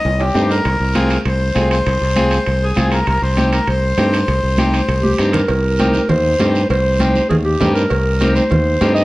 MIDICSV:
0, 0, Header, 1, 6, 480
1, 0, Start_track
1, 0, Key_signature, -3, "minor"
1, 0, Tempo, 302419
1, 1033, Time_signature, 4, 2, 24, 8
1, 14351, End_track
2, 0, Start_track
2, 0, Title_t, "Accordion"
2, 0, Program_c, 0, 21
2, 0, Note_on_c, 0, 75, 109
2, 308, Note_on_c, 0, 67, 84
2, 350, Note_off_c, 0, 75, 0
2, 793, Note_on_c, 0, 70, 86
2, 805, Note_off_c, 0, 67, 0
2, 1930, Note_off_c, 0, 70, 0
2, 2020, Note_on_c, 0, 72, 91
2, 2678, Note_off_c, 0, 72, 0
2, 2720, Note_on_c, 0, 72, 91
2, 4179, Note_on_c, 0, 68, 87
2, 4201, Note_off_c, 0, 72, 0
2, 4615, Note_off_c, 0, 68, 0
2, 4648, Note_on_c, 0, 70, 76
2, 4863, Note_off_c, 0, 70, 0
2, 4887, Note_on_c, 0, 70, 96
2, 5105, Note_off_c, 0, 70, 0
2, 5125, Note_on_c, 0, 72, 88
2, 5567, Note_off_c, 0, 72, 0
2, 5593, Note_on_c, 0, 70, 75
2, 5842, Note_off_c, 0, 70, 0
2, 5842, Note_on_c, 0, 72, 91
2, 8176, Note_off_c, 0, 72, 0
2, 14351, End_track
3, 0, Start_track
3, 0, Title_t, "Clarinet"
3, 0, Program_c, 1, 71
3, 7980, Note_on_c, 1, 67, 88
3, 8460, Note_on_c, 1, 70, 81
3, 8483, Note_off_c, 1, 67, 0
3, 9667, Note_off_c, 1, 70, 0
3, 9679, Note_on_c, 1, 72, 102
3, 10573, Note_off_c, 1, 72, 0
3, 10630, Note_on_c, 1, 72, 100
3, 11528, Note_off_c, 1, 72, 0
3, 11576, Note_on_c, 1, 68, 87
3, 11688, Note_off_c, 1, 68, 0
3, 11820, Note_on_c, 1, 67, 92
3, 12272, Note_off_c, 1, 67, 0
3, 12298, Note_on_c, 1, 70, 88
3, 13253, Note_on_c, 1, 72, 107
3, 13276, Note_off_c, 1, 70, 0
3, 14186, Note_off_c, 1, 72, 0
3, 14196, Note_on_c, 1, 75, 110
3, 14351, Note_off_c, 1, 75, 0
3, 14351, End_track
4, 0, Start_track
4, 0, Title_t, "Clean electric guitar"
4, 0, Program_c, 2, 27
4, 546, Note_on_c, 2, 60, 65
4, 554, Note_on_c, 2, 63, 57
4, 560, Note_on_c, 2, 67, 69
4, 886, Note_off_c, 2, 60, 0
4, 889, Note_off_c, 2, 63, 0
4, 893, Note_off_c, 2, 67, 0
4, 1507, Note_on_c, 2, 60, 77
4, 1512, Note_on_c, 2, 65, 73
4, 1518, Note_on_c, 2, 68, 83
4, 1847, Note_off_c, 2, 60, 0
4, 1849, Note_off_c, 2, 65, 0
4, 1852, Note_off_c, 2, 68, 0
4, 2461, Note_on_c, 2, 60, 67
4, 2472, Note_on_c, 2, 65, 59
4, 2477, Note_on_c, 2, 68, 67
4, 2804, Note_off_c, 2, 60, 0
4, 2810, Note_off_c, 2, 65, 0
4, 2810, Note_off_c, 2, 68, 0
4, 3427, Note_on_c, 2, 60, 80
4, 3433, Note_on_c, 2, 65, 68
4, 3441, Note_on_c, 2, 68, 90
4, 3767, Note_off_c, 2, 60, 0
4, 3770, Note_off_c, 2, 65, 0
4, 3774, Note_off_c, 2, 68, 0
4, 4384, Note_on_c, 2, 60, 71
4, 4392, Note_on_c, 2, 65, 62
4, 4399, Note_on_c, 2, 68, 73
4, 4726, Note_off_c, 2, 60, 0
4, 4730, Note_off_c, 2, 65, 0
4, 4733, Note_off_c, 2, 68, 0
4, 5348, Note_on_c, 2, 60, 65
4, 5355, Note_on_c, 2, 63, 59
4, 5363, Note_on_c, 2, 67, 75
4, 5688, Note_off_c, 2, 60, 0
4, 5692, Note_off_c, 2, 63, 0
4, 5696, Note_off_c, 2, 67, 0
4, 6310, Note_on_c, 2, 60, 71
4, 6319, Note_on_c, 2, 63, 57
4, 6326, Note_on_c, 2, 67, 75
4, 6649, Note_off_c, 2, 60, 0
4, 6654, Note_off_c, 2, 63, 0
4, 6657, Note_off_c, 2, 67, 0
4, 7271, Note_on_c, 2, 60, 76
4, 7279, Note_on_c, 2, 63, 70
4, 7289, Note_on_c, 2, 67, 86
4, 7610, Note_off_c, 2, 60, 0
4, 7613, Note_off_c, 2, 63, 0
4, 7619, Note_off_c, 2, 67, 0
4, 8234, Note_on_c, 2, 60, 81
4, 8241, Note_on_c, 2, 63, 66
4, 8253, Note_on_c, 2, 67, 82
4, 8571, Note_off_c, 2, 60, 0
4, 8576, Note_off_c, 2, 63, 0
4, 8578, Note_off_c, 2, 67, 0
4, 9197, Note_on_c, 2, 60, 73
4, 9203, Note_on_c, 2, 63, 75
4, 9207, Note_on_c, 2, 67, 85
4, 9532, Note_off_c, 2, 60, 0
4, 9534, Note_off_c, 2, 63, 0
4, 9537, Note_off_c, 2, 67, 0
4, 10150, Note_on_c, 2, 60, 69
4, 10157, Note_on_c, 2, 63, 62
4, 10166, Note_on_c, 2, 67, 78
4, 10489, Note_off_c, 2, 60, 0
4, 10492, Note_off_c, 2, 63, 0
4, 10496, Note_off_c, 2, 67, 0
4, 11110, Note_on_c, 2, 60, 64
4, 11119, Note_on_c, 2, 63, 57
4, 11126, Note_on_c, 2, 67, 78
4, 11448, Note_off_c, 2, 60, 0
4, 11450, Note_off_c, 2, 63, 0
4, 11456, Note_off_c, 2, 67, 0
4, 12066, Note_on_c, 2, 60, 64
4, 12073, Note_on_c, 2, 63, 69
4, 12084, Note_on_c, 2, 67, 82
4, 12406, Note_off_c, 2, 60, 0
4, 12407, Note_off_c, 2, 63, 0
4, 12414, Note_off_c, 2, 67, 0
4, 13031, Note_on_c, 2, 60, 84
4, 13040, Note_on_c, 2, 63, 75
4, 13040, Note_on_c, 2, 67, 85
4, 13368, Note_off_c, 2, 60, 0
4, 13370, Note_off_c, 2, 63, 0
4, 13372, Note_off_c, 2, 67, 0
4, 13983, Note_on_c, 2, 60, 76
4, 13990, Note_on_c, 2, 63, 76
4, 13999, Note_on_c, 2, 67, 92
4, 14322, Note_off_c, 2, 60, 0
4, 14327, Note_off_c, 2, 63, 0
4, 14329, Note_off_c, 2, 67, 0
4, 14351, End_track
5, 0, Start_track
5, 0, Title_t, "Fingered electric bass"
5, 0, Program_c, 3, 33
5, 79, Note_on_c, 3, 36, 82
5, 460, Note_off_c, 3, 36, 0
5, 553, Note_on_c, 3, 43, 75
5, 937, Note_off_c, 3, 43, 0
5, 1037, Note_on_c, 3, 36, 97
5, 1228, Note_off_c, 3, 36, 0
5, 1273, Note_on_c, 3, 36, 78
5, 1849, Note_off_c, 3, 36, 0
5, 1991, Note_on_c, 3, 36, 91
5, 2376, Note_off_c, 3, 36, 0
5, 2472, Note_on_c, 3, 36, 81
5, 2857, Note_off_c, 3, 36, 0
5, 2963, Note_on_c, 3, 36, 109
5, 3152, Note_off_c, 3, 36, 0
5, 3199, Note_on_c, 3, 36, 82
5, 3773, Note_off_c, 3, 36, 0
5, 3924, Note_on_c, 3, 36, 82
5, 4304, Note_off_c, 3, 36, 0
5, 4400, Note_on_c, 3, 36, 84
5, 4782, Note_off_c, 3, 36, 0
5, 4878, Note_on_c, 3, 36, 106
5, 5069, Note_off_c, 3, 36, 0
5, 5113, Note_on_c, 3, 36, 85
5, 5691, Note_off_c, 3, 36, 0
5, 5834, Note_on_c, 3, 36, 88
5, 6219, Note_off_c, 3, 36, 0
5, 6312, Note_on_c, 3, 43, 84
5, 6698, Note_off_c, 3, 43, 0
5, 6795, Note_on_c, 3, 36, 103
5, 6988, Note_off_c, 3, 36, 0
5, 7038, Note_on_c, 3, 36, 84
5, 7613, Note_off_c, 3, 36, 0
5, 7752, Note_on_c, 3, 36, 90
5, 8137, Note_off_c, 3, 36, 0
5, 8239, Note_on_c, 3, 43, 84
5, 8622, Note_off_c, 3, 43, 0
5, 8714, Note_on_c, 3, 36, 89
5, 9483, Note_off_c, 3, 36, 0
5, 9676, Note_on_c, 3, 39, 94
5, 10060, Note_off_c, 3, 39, 0
5, 10158, Note_on_c, 3, 43, 97
5, 10541, Note_off_c, 3, 43, 0
5, 10634, Note_on_c, 3, 36, 100
5, 11402, Note_off_c, 3, 36, 0
5, 11601, Note_on_c, 3, 39, 82
5, 11982, Note_off_c, 3, 39, 0
5, 12070, Note_on_c, 3, 43, 101
5, 12455, Note_off_c, 3, 43, 0
5, 12551, Note_on_c, 3, 36, 94
5, 13319, Note_off_c, 3, 36, 0
5, 13514, Note_on_c, 3, 39, 92
5, 13896, Note_off_c, 3, 39, 0
5, 13988, Note_on_c, 3, 43, 102
5, 14351, Note_off_c, 3, 43, 0
5, 14351, End_track
6, 0, Start_track
6, 0, Title_t, "Drums"
6, 84, Note_on_c, 9, 65, 54
6, 85, Note_on_c, 9, 74, 60
6, 243, Note_off_c, 9, 65, 0
6, 244, Note_off_c, 9, 74, 0
6, 325, Note_on_c, 9, 65, 81
6, 484, Note_off_c, 9, 65, 0
6, 553, Note_on_c, 9, 66, 78
6, 560, Note_on_c, 9, 73, 69
6, 561, Note_on_c, 9, 63, 73
6, 712, Note_off_c, 9, 66, 0
6, 719, Note_off_c, 9, 73, 0
6, 720, Note_off_c, 9, 63, 0
6, 787, Note_on_c, 9, 66, 79
6, 804, Note_on_c, 9, 73, 68
6, 946, Note_off_c, 9, 66, 0
6, 962, Note_off_c, 9, 73, 0
6, 1032, Note_on_c, 9, 74, 65
6, 1034, Note_on_c, 9, 65, 66
6, 1191, Note_off_c, 9, 74, 0
6, 1192, Note_off_c, 9, 65, 0
6, 1505, Note_on_c, 9, 73, 70
6, 1510, Note_on_c, 9, 65, 60
6, 1516, Note_on_c, 9, 63, 79
6, 1663, Note_off_c, 9, 73, 0
6, 1668, Note_off_c, 9, 65, 0
6, 1674, Note_off_c, 9, 63, 0
6, 1751, Note_on_c, 9, 73, 62
6, 1754, Note_on_c, 9, 65, 62
6, 1909, Note_off_c, 9, 73, 0
6, 1913, Note_off_c, 9, 65, 0
6, 1991, Note_on_c, 9, 65, 63
6, 1993, Note_on_c, 9, 74, 69
6, 2150, Note_off_c, 9, 65, 0
6, 2152, Note_off_c, 9, 74, 0
6, 2469, Note_on_c, 9, 73, 65
6, 2472, Note_on_c, 9, 65, 62
6, 2472, Note_on_c, 9, 66, 60
6, 2477, Note_on_c, 9, 63, 69
6, 2628, Note_off_c, 9, 73, 0
6, 2631, Note_off_c, 9, 65, 0
6, 2631, Note_off_c, 9, 66, 0
6, 2636, Note_off_c, 9, 63, 0
6, 2715, Note_on_c, 9, 65, 69
6, 2719, Note_on_c, 9, 73, 65
6, 2874, Note_off_c, 9, 65, 0
6, 2878, Note_off_c, 9, 73, 0
6, 2959, Note_on_c, 9, 65, 64
6, 2960, Note_on_c, 9, 74, 75
6, 3118, Note_off_c, 9, 65, 0
6, 3119, Note_off_c, 9, 74, 0
6, 3434, Note_on_c, 9, 65, 65
6, 3435, Note_on_c, 9, 73, 65
6, 3438, Note_on_c, 9, 63, 80
6, 3593, Note_off_c, 9, 65, 0
6, 3593, Note_off_c, 9, 73, 0
6, 3596, Note_off_c, 9, 63, 0
6, 3665, Note_on_c, 9, 73, 70
6, 3668, Note_on_c, 9, 65, 59
6, 3824, Note_off_c, 9, 73, 0
6, 3827, Note_off_c, 9, 65, 0
6, 3911, Note_on_c, 9, 65, 60
6, 3918, Note_on_c, 9, 74, 65
6, 4069, Note_off_c, 9, 65, 0
6, 4077, Note_off_c, 9, 74, 0
6, 4395, Note_on_c, 9, 65, 65
6, 4402, Note_on_c, 9, 73, 64
6, 4403, Note_on_c, 9, 63, 69
6, 4554, Note_off_c, 9, 65, 0
6, 4561, Note_off_c, 9, 73, 0
6, 4562, Note_off_c, 9, 63, 0
6, 4628, Note_on_c, 9, 65, 68
6, 4634, Note_on_c, 9, 73, 61
6, 4787, Note_off_c, 9, 65, 0
6, 4792, Note_off_c, 9, 73, 0
6, 4873, Note_on_c, 9, 65, 62
6, 4877, Note_on_c, 9, 74, 65
6, 5031, Note_off_c, 9, 65, 0
6, 5036, Note_off_c, 9, 74, 0
6, 5350, Note_on_c, 9, 65, 58
6, 5356, Note_on_c, 9, 73, 66
6, 5368, Note_on_c, 9, 63, 83
6, 5508, Note_off_c, 9, 65, 0
6, 5515, Note_off_c, 9, 73, 0
6, 5527, Note_off_c, 9, 63, 0
6, 5594, Note_on_c, 9, 73, 69
6, 5596, Note_on_c, 9, 65, 66
6, 5752, Note_off_c, 9, 73, 0
6, 5755, Note_off_c, 9, 65, 0
6, 5831, Note_on_c, 9, 65, 58
6, 5838, Note_on_c, 9, 74, 65
6, 5990, Note_off_c, 9, 65, 0
6, 5997, Note_off_c, 9, 74, 0
6, 6312, Note_on_c, 9, 65, 64
6, 6312, Note_on_c, 9, 66, 70
6, 6316, Note_on_c, 9, 63, 72
6, 6316, Note_on_c, 9, 73, 68
6, 6471, Note_off_c, 9, 65, 0
6, 6471, Note_off_c, 9, 66, 0
6, 6474, Note_off_c, 9, 73, 0
6, 6475, Note_off_c, 9, 63, 0
6, 6562, Note_on_c, 9, 73, 66
6, 6567, Note_on_c, 9, 65, 64
6, 6721, Note_off_c, 9, 73, 0
6, 6725, Note_off_c, 9, 65, 0
6, 6795, Note_on_c, 9, 65, 59
6, 6803, Note_on_c, 9, 74, 74
6, 6953, Note_off_c, 9, 65, 0
6, 6962, Note_off_c, 9, 74, 0
6, 7268, Note_on_c, 9, 63, 88
6, 7276, Note_on_c, 9, 65, 63
6, 7284, Note_on_c, 9, 73, 67
6, 7427, Note_off_c, 9, 63, 0
6, 7434, Note_off_c, 9, 65, 0
6, 7443, Note_off_c, 9, 73, 0
6, 7519, Note_on_c, 9, 65, 60
6, 7520, Note_on_c, 9, 73, 62
6, 7678, Note_off_c, 9, 65, 0
6, 7679, Note_off_c, 9, 73, 0
6, 7756, Note_on_c, 9, 65, 61
6, 7766, Note_on_c, 9, 74, 67
6, 7914, Note_off_c, 9, 65, 0
6, 7925, Note_off_c, 9, 74, 0
6, 7994, Note_on_c, 9, 63, 93
6, 8153, Note_off_c, 9, 63, 0
6, 8227, Note_on_c, 9, 65, 70
6, 8242, Note_on_c, 9, 73, 67
6, 8386, Note_off_c, 9, 65, 0
6, 8401, Note_off_c, 9, 73, 0
6, 8465, Note_on_c, 9, 65, 66
6, 8469, Note_on_c, 9, 73, 59
6, 8478, Note_on_c, 9, 64, 74
6, 8623, Note_off_c, 9, 65, 0
6, 8627, Note_off_c, 9, 73, 0
6, 8637, Note_off_c, 9, 64, 0
6, 8703, Note_on_c, 9, 56, 92
6, 8707, Note_on_c, 9, 74, 67
6, 8862, Note_off_c, 9, 56, 0
6, 8866, Note_off_c, 9, 74, 0
6, 9188, Note_on_c, 9, 73, 62
6, 9200, Note_on_c, 9, 56, 66
6, 9201, Note_on_c, 9, 63, 80
6, 9346, Note_off_c, 9, 73, 0
6, 9359, Note_off_c, 9, 56, 0
6, 9359, Note_off_c, 9, 63, 0
6, 9423, Note_on_c, 9, 73, 66
6, 9438, Note_on_c, 9, 63, 65
6, 9582, Note_off_c, 9, 73, 0
6, 9597, Note_off_c, 9, 63, 0
6, 9667, Note_on_c, 9, 56, 76
6, 9671, Note_on_c, 9, 64, 78
6, 9672, Note_on_c, 9, 74, 70
6, 9826, Note_off_c, 9, 56, 0
6, 9830, Note_off_c, 9, 64, 0
6, 9831, Note_off_c, 9, 74, 0
6, 10150, Note_on_c, 9, 63, 80
6, 10154, Note_on_c, 9, 73, 64
6, 10158, Note_on_c, 9, 56, 68
6, 10158, Note_on_c, 9, 66, 66
6, 10309, Note_off_c, 9, 63, 0
6, 10313, Note_off_c, 9, 73, 0
6, 10317, Note_off_c, 9, 56, 0
6, 10317, Note_off_c, 9, 66, 0
6, 10403, Note_on_c, 9, 73, 69
6, 10561, Note_off_c, 9, 73, 0
6, 10636, Note_on_c, 9, 74, 71
6, 10642, Note_on_c, 9, 56, 99
6, 10795, Note_off_c, 9, 74, 0
6, 10800, Note_off_c, 9, 56, 0
6, 11106, Note_on_c, 9, 63, 87
6, 11111, Note_on_c, 9, 56, 69
6, 11118, Note_on_c, 9, 73, 69
6, 11265, Note_off_c, 9, 63, 0
6, 11270, Note_off_c, 9, 56, 0
6, 11277, Note_off_c, 9, 73, 0
6, 11357, Note_on_c, 9, 63, 58
6, 11358, Note_on_c, 9, 73, 64
6, 11516, Note_off_c, 9, 63, 0
6, 11517, Note_off_c, 9, 73, 0
6, 11593, Note_on_c, 9, 56, 76
6, 11596, Note_on_c, 9, 74, 68
6, 11598, Note_on_c, 9, 64, 85
6, 11752, Note_off_c, 9, 56, 0
6, 11755, Note_off_c, 9, 74, 0
6, 11757, Note_off_c, 9, 64, 0
6, 12070, Note_on_c, 9, 73, 68
6, 12071, Note_on_c, 9, 56, 63
6, 12071, Note_on_c, 9, 66, 72
6, 12086, Note_on_c, 9, 63, 76
6, 12086, Note_on_c, 9, 64, 60
6, 12228, Note_off_c, 9, 73, 0
6, 12230, Note_off_c, 9, 56, 0
6, 12230, Note_off_c, 9, 66, 0
6, 12245, Note_off_c, 9, 63, 0
6, 12245, Note_off_c, 9, 64, 0
6, 12310, Note_on_c, 9, 73, 73
6, 12469, Note_off_c, 9, 73, 0
6, 12544, Note_on_c, 9, 56, 93
6, 12561, Note_on_c, 9, 74, 74
6, 12703, Note_off_c, 9, 56, 0
6, 12720, Note_off_c, 9, 74, 0
6, 13027, Note_on_c, 9, 56, 66
6, 13027, Note_on_c, 9, 73, 74
6, 13038, Note_on_c, 9, 63, 85
6, 13186, Note_off_c, 9, 56, 0
6, 13186, Note_off_c, 9, 73, 0
6, 13197, Note_off_c, 9, 63, 0
6, 13262, Note_on_c, 9, 73, 72
6, 13279, Note_on_c, 9, 63, 62
6, 13420, Note_off_c, 9, 73, 0
6, 13438, Note_off_c, 9, 63, 0
6, 13487, Note_on_c, 9, 74, 64
6, 13502, Note_on_c, 9, 56, 77
6, 13520, Note_on_c, 9, 64, 77
6, 13646, Note_off_c, 9, 74, 0
6, 13661, Note_off_c, 9, 56, 0
6, 13678, Note_off_c, 9, 64, 0
6, 13984, Note_on_c, 9, 56, 71
6, 13984, Note_on_c, 9, 66, 72
6, 13985, Note_on_c, 9, 73, 66
6, 13992, Note_on_c, 9, 63, 85
6, 14143, Note_off_c, 9, 56, 0
6, 14143, Note_off_c, 9, 66, 0
6, 14144, Note_off_c, 9, 73, 0
6, 14151, Note_off_c, 9, 63, 0
6, 14217, Note_on_c, 9, 73, 72
6, 14351, Note_off_c, 9, 73, 0
6, 14351, End_track
0, 0, End_of_file